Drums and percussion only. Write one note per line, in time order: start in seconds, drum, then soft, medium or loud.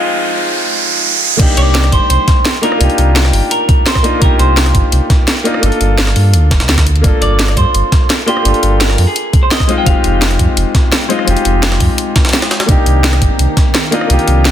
1.39 kick loud
1.39 closed hi-hat medium
1.39 closed hi-hat loud
1.39 crash loud
1.57 closed hi-hat medium
1.75 snare loud
1.75 closed hi-hat medium
1.75 closed hi-hat loud
1.84 cross-stick medium
1.84 closed hi-hat soft
1.92 kick medium
1.92 closed hi-hat medium
2.10 closed hi-hat medium
2.10 closed hi-hat loud
2.28 kick loud
2.28 snare medium
2.28 closed hi-hat medium
2.45 snare loud
2.45 closed hi-hat medium
2.45 closed hi-hat loud
2.63 closed hi-hat medium
2.72 cross-stick medium
2.81 closed hi-hat medium
2.81 closed hi-hat loud
2.90 closed hi-hat soft
2.98 closed hi-hat medium
3.16 snare loud
3.16 closed hi-hat loud
3.16 closed hi-hat medium
3.25 cross-stick soft
3.25 snare medium
3.25 closed hi-hat soft
3.33 closed hi-hat medium
3.33 open hi-hat medium
3.51 closed hi-hat medium
3.69 kick loud
3.69 closed hi-hat medium
3.86 snare loud
3.86 closed hi-hat loud
3.86 closed hi-hat medium
3.95 kick medium
3.95 cross-stick medium
3.95 snare soft
4.04 closed hi-hat medium
4.22 kick loud
4.22 closed hi-hat medium
4.39 closed hi-hat medium
4.57 snare loud
4.57 closed hi-hat medium
4.66 cross-stick soft
4.66 closed hi-hat soft
4.75 kick medium
4.75 closed hi-hat medium
4.92 closed hi-hat medium
5.10 kick loud
5.10 snare soft
5.10 closed hi-hat medium
5.28 snare loud
5.28 closed hi-hat medium
5.45 closed hi-hat medium
5.54 cross-stick medium
5.63 closed hi-hat medium
5.72 closed hi-hat soft
5.81 closed hi-hat medium
5.98 snare loud
5.98 closed hi-hat medium
6.07 cross-stick soft
6.07 snare medium
6.07 closed hi-hat soft
6.16 closed hi-hat medium
6.16 open hi-hat medium
6.33 closed hi-hat medium
6.51 kick loud
6.51 snare loud
6.51 closed hi-hat medium
6.60 snare loud
6.60 closed hi-hat medium
6.69 snare loud
6.69 closed hi-hat medium
6.78 kick medium
6.78 cross-stick medium
6.78 snare loud
6.78 closed hi-hat medium
6.86 closed hi-hat medium
6.96 closed hi-hat soft
7.04 kick loud
7.04 closed hi-hat medium
7.22 closed hi-hat medium
7.39 snare loud
7.39 closed hi-hat medium
7.48 cross-stick soft
7.48 closed hi-hat soft
7.57 kick medium
7.57 closed hi-hat medium
7.74 closed hi-hat medium
7.92 kick loud
7.92 snare medium
7.92 closed hi-hat medium
8.10 snare loud
8.10 closed hi-hat medium
8.28 closed hi-hat medium
8.37 cross-stick soft
8.45 closed hi-hat medium
8.45 closed hi-hat loud
8.54 closed hi-hat soft
8.63 closed hi-hat medium
8.80 snare loud
8.80 closed hi-hat medium
8.90 cross-stick soft
8.90 snare medium
8.90 closed hi-hat soft
8.98 closed hi-hat medium
8.98 open hi-hat medium
9.16 closed hi-hat medium
9.33 kick loud
9.33 closed hi-hat medium
9.51 snare loud
9.51 closed hi-hat medium
9.60 kick medium
9.60 cross-stick medium
9.60 snare soft
9.69 closed hi-hat medium
9.86 kick loud
9.86 closed hi-hat medium
9.86 closed hi-hat loud
10.04 closed hi-hat medium
10.22 snare loud
10.22 closed hi-hat medium
10.22 closed hi-hat loud
10.31 cross-stick soft
10.31 closed hi-hat soft
10.39 kick medium
10.39 closed hi-hat medium
10.57 closed hi-hat medium
10.57 closed hi-hat loud
10.75 kick loud
10.75 snare medium
10.75 closed hi-hat medium
10.92 snare loud
10.92 closed hi-hat loud
10.92 closed hi-hat medium
11.10 closed hi-hat medium
11.19 cross-stick soft
11.28 closed hi-hat medium
11.28 closed hi-hat loud
11.36 closed hi-hat soft
11.45 closed hi-hat medium
11.63 snare loud
11.63 closed hi-hat medium
11.63 closed hi-hat loud
11.72 cross-stick soft
11.72 snare medium
11.72 closed hi-hat soft
11.80 kick medium
11.80 closed hi-hat medium
11.80 open hi-hat medium
11.98 closed hi-hat medium
11.98 closed hi-hat loud
12.16 kick loud
12.16 snare loud
12.16 closed hi-hat medium
12.25 cross-stick soft
12.25 snare medium
12.25 closed hi-hat medium
12.29 snare medium
12.29 closed hi-hat medium
12.33 snare loud
12.33 closed hi-hat medium
12.33 closed hi-hat loud
12.42 cross-stick medium
12.42 snare loud
12.42 closed hi-hat medium
12.51 snare loud
12.51 closed hi-hat medium
12.60 snare loud
12.60 closed hi-hat medium
12.69 kick loud
12.69 closed hi-hat loud
12.86 closed hi-hat medium
13.04 snare loud
13.04 closed hi-hat medium
13.04 closed hi-hat loud
13.13 cross-stick medium
13.13 closed hi-hat soft
13.22 kick medium
13.22 closed hi-hat medium
13.39 closed hi-hat medium
13.57 kick loud
13.57 snare medium
13.57 closed hi-hat medium
13.75 snare loud
13.75 closed hi-hat loud
13.75 closed hi-hat medium
13.92 closed hi-hat medium
14.01 cross-stick soft
14.10 closed hi-hat medium
14.19 closed hi-hat soft
14.28 closed hi-hat medium
14.45 snare loud
14.45 closed hi-hat loud
14.45 closed hi-hat medium